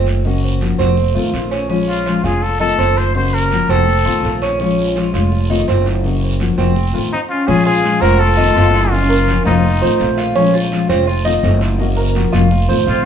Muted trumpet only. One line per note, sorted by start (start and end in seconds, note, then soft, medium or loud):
1.89 2.26 F4 medium
2.24 2.44 G#4 medium
2.42 2.60 A4 medium
2.61 2.99 A4 loud
2.97 3.15 C5 loud
3.16 3.36 C5 loud
3.34 3.72 A#4 loud
3.70 4.42 A4 medium
7.12 7.20 D#4 medium
7.30 7.49 F4 medium
7.48 7.65 G#4 medium
7.66 8.03 G#4 loud
8.01 8.21 A#4 loud
8.20 8.92 A4 loud
8.91 9.45 F4 medium
9.46 10.14 D#4 medium
12.87 13.05 F4 medium